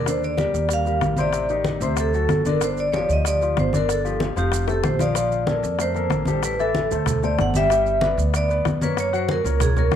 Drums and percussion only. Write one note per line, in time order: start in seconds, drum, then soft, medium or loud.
0.06 high bongo medium
0.06 high conga soft
0.06 maracas medium
0.22 high conga soft
0.22 maracas soft
0.38 high bongo medium
0.38 high conga medium
0.38 maracas soft
0.54 high bongo soft
0.54 high conga soft
0.54 maracas medium
0.69 high bongo medium
0.69 high conga soft
0.69 maracas medium
0.85 high bongo soft
0.85 high conga soft
0.85 maracas soft
1.01 high bongo medium
1.01 low bongo medium
1.01 high conga medium
1.01 maracas soft
1.17 high bongo soft
1.17 high conga medium
1.17 maracas medium
1.32 high bongo medium
1.32 high conga soft
1.32 maracas medium
1.49 high conga soft
1.49 maracas soft
1.64 high bongo medium
1.64 high conga medium
1.64 maracas soft
1.81 high bongo soft
1.81 high conga soft
1.81 maracas medium
1.97 high bongo medium
1.97 high conga soft
1.97 maracas medium
2.13 high bongo soft
2.13 high conga soft
2.13 maracas soft
2.29 high bongo medium
2.29 low bongo medium
2.29 high conga medium
2.29 maracas soft
2.45 high bongo soft
2.45 high conga medium
2.45 maracas medium
2.61 high bongo medium
2.61 high conga soft
2.61 maracas medium
2.77 high conga soft
2.77 maracas soft
2.93 high bongo medium
2.93 high conga medium
2.93 maracas soft
3.09 high bongo soft
3.09 high conga soft
3.09 maracas medium
3.25 high bongo medium
3.25 high conga soft
3.25 maracas medium
3.41 high bongo soft
3.41 high conga soft
3.41 maracas soft
3.57 high bongo medium
3.57 low bongo medium
3.57 high conga medium
3.57 maracas soft
3.73 high bongo soft
3.73 high conga medium
3.73 maracas medium
3.89 high bongo medium
3.89 high conga soft
3.89 maracas medium
4.06 high conga soft
4.06 maracas soft
4.20 high bongo medium
4.20 high conga medium
4.20 maracas soft
4.36 high bongo soft
4.36 high conga soft
4.36 maracas medium
4.52 high bongo medium
4.52 high conga soft
4.52 maracas medium
4.68 high bongo loud
4.68 high conga soft
4.68 maracas soft
4.84 high bongo loud
4.84 high conga medium
4.84 maracas soft
4.99 low bongo medium
4.99 high conga medium
4.99 maracas medium
5.15 high bongo medium
5.15 high conga soft
5.15 maracas medium
5.32 high conga soft
5.32 maracas soft
5.47 high bongo medium
5.47 high conga medium
5.47 maracas soft
5.63 high bongo soft
5.63 high conga soft
5.63 maracas medium
5.79 high bongo medium
5.79 high conga soft
5.79 maracas medium
5.94 high bongo soft
5.94 high conga soft
5.94 maracas soft
6.10 high bongo medium
6.10 low bongo medium
6.10 high conga medium
6.10 maracas soft
6.25 high bongo soft
6.25 high conga medium
6.25 maracas medium
6.43 high bongo medium
6.43 high conga soft
6.43 maracas medium
6.59 high conga soft
6.59 maracas soft
6.75 high bongo medium
6.75 high conga medium
6.75 maracas soft
6.91 high bongo soft
6.91 high conga soft
6.91 maracas medium
7.06 high bongo medium
7.06 high conga soft
7.06 low conga medium
7.06 maracas medium
7.23 high bongo soft
7.23 high conga soft
7.23 maracas soft
7.38 high bongo medium
7.38 low bongo medium
7.38 high conga medium
7.38 maracas soft
7.54 high bongo soft
7.54 high conga medium
7.54 maracas medium
7.70 high bongo medium
7.70 high conga soft
7.70 maracas medium
7.86 high conga soft
7.86 maracas soft
8.01 high bongo medium
8.01 high conga medium
8.01 maracas soft
8.18 high bongo soft
8.18 high conga soft
8.18 maracas medium
8.34 high bongo medium
8.34 high conga soft
8.34 maracas medium
8.49 high bongo soft
8.49 high conga soft
8.49 maracas soft
8.65 high bongo medium
8.65 low bongo medium
8.65 high conga medium
8.65 maracas soft
8.81 high bongo soft
8.81 high conga medium
8.81 maracas medium
8.97 high bongo medium
8.97 high conga soft
8.97 maracas medium
9.13 high conga soft
9.13 maracas soft
9.29 high bongo medium
9.29 high conga medium
9.29 maracas soft
9.44 high bongo soft
9.44 high conga soft
9.44 maracas medium
9.60 high bongo medium
9.60 high conga soft
9.60 low conga medium
9.60 maracas medium
9.76 high bongo soft
9.76 high conga soft
9.76 low conga medium
9.76 maracas soft
9.91 high bongo medium
9.91 low bongo medium
9.91 high conga medium